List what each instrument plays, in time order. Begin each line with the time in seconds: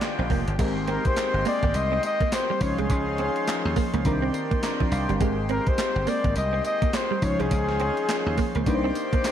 Already playing: accordion D3 F3 G#3 A#3 G4, fm electric piano D3 G#3 C#4 F4 A#4, muted trumpet D5
0.01 muted clean electric guitar stroke, snare, clap, closed hi-hat
0.19 slap bass A#1, clean electric guitar C4
0.30 slap bass F1, clean electric guitar A#3, kick, open hi-hat
0.48 slap bass G1, closed hi-hat
0.58 slap bass G#1, accordion D#3 G#3 A#3 G4 C5, fm electric piano G#3 C4 G4 A#4, clean electric guitar G#3, kick, closed hi-hat, crash, tambourine
0.77 muted clean electric guitar stroke
0.88 clean electric guitar C4, muted trumpet A#4, closed hi-hat
1.05 muted trumpet C5, kick, closed hi-hat
1.16 muted clean electric guitar stroke, snare, clap, closed hi-hat, tambourine
1.34 slap bass G1
1.45 clean electric guitar A#3, muted trumpet D5, open hi-hat, tambourine
1.63 slap bass G#1, clean electric guitar A#3, kick, closed hi-hat
1.74 slap bass C2, muted trumpet D#5, closed hi-hat, tambourine
1.92 clean electric guitar C4
2.03 muted trumpet D#5, muted clean electric guitar stroke, closed hi-hat, tambourine
2.21 clean electric guitar A#3, kick, closed hi-hat
2.32 muted trumpet C5, snare, clap, closed hi-hat, tambourine
2.50 clean electric guitar G3
2.60 slap bass C#2, fm electric piano F3 C#4 D#4 C5, accordion C#4 F4, muted trumpet C#5, muted clean electric guitar stroke, kick, open hi-hat, tambourine
2.78 slap bass C2, clean electric guitar G#3, muted trumpet G#4, closed hi-hat
2.90 slap bass C#2, clean electric guitar C#4, kick, closed hi-hat, tambourine
3.07 muted clean electric guitar stroke
3.18 clean electric guitar C4, closed hi-hat
3.36 closed hi-hat
3.47 muted clean electric guitar stroke, snare, clap, closed hi-hat, tambourine
3.65 slap bass D#2
3.76 clean electric guitar A#3, kick, open hi-hat, tambourine
3.94 slap bass C#2, clean electric guitar A#3, closed hi-hat
4.05 slap bass C2, fm electric piano D#3 C4 D4 A#4, accordion A#3 D4 G4, kick, closed hi-hat, tambourine
4.22 clean electric guitar C4
4.34 fm electric piano C6, muted clean electric guitar stroke, closed hi-hat, tambourine
4.51 clean electric guitar A#3, kick, closed hi-hat
4.63 fm electric piano A#5, snare, clap, closed hi-hat, tambourine
4.80 clean electric guitar F3, kick
4.92 slap bass C2, fm electric piano F5, muted clean electric guitar stroke, open hi-hat, tambourine
5.09 slap bass G1, clean electric guitar G3, closed hi-hat
5.20 slap bass G#1, fm electric piano G#3 C4 G4 A#4, accordion G#3 C5, clean electric guitar G#3, kick, closed hi-hat, tambourine
5.38 muted clean electric guitar stroke
5.49 clean electric guitar C4, muted trumpet A#4, closed hi-hat
5.67 muted trumpet C5, kick, closed hi-hat
5.78 muted clean electric guitar stroke, snare, clap, closed hi-hat, tambourine
5.96 slap bass G1
6.07 clean electric guitar A#3, muted trumpet D5, open hi-hat, tambourine
6.24 slap bass G#1, clean electric guitar A#3, kick, closed hi-hat
6.35 slap bass C2, muted trumpet D#5, closed hi-hat, tambourine
6.53 clean electric guitar C4
6.64 muted trumpet D#5, muted clean electric guitar stroke, closed hi-hat, tambourine
6.82 clean electric guitar A#3, kick, closed hi-hat
6.93 muted trumpet C5, snare, clap, closed hi-hat, tambourine
7.11 clean electric guitar G3
7.22 slap bass C#2, accordion D#3 C#4 F4, fm electric piano F3 C#4 D#4 C5, muted trumpet C#5, muted clean electric guitar stroke, kick, open hi-hat, tambourine
7.39 slap bass C2, clean electric guitar G#3, muted trumpet G#4, closed hi-hat
7.51 slap bass C#2, clean electric guitar C#4, kick, closed hi-hat, tambourine
7.69 muted clean electric guitar stroke, snare
7.80 clean electric guitar C4, closed hi-hat
7.97 closed hi-hat
8.09 muted clean electric guitar stroke, snare, clap, closed hi-hat, tambourine
8.26 slap bass D#2
8.37 clean electric guitar A#3, kick, open hi-hat, tambourine
8.55 slap bass C#2, clean electric guitar A#3, closed hi-hat
8.66 slap bass C2, fm electric piano A#3 D4 D#4 B4, accordion A#3 G4 D5, kick, closed hi-hat, tambourine
8.75 fm electric piano C5
8.84 clean electric guitar C4
8.95 muted clean electric guitar stroke, closed hi-hat, tambourine
9.13 clean electric guitar A#3, kick, closed hi-hat
9.24 snare, clap, closed hi-hat, tambourine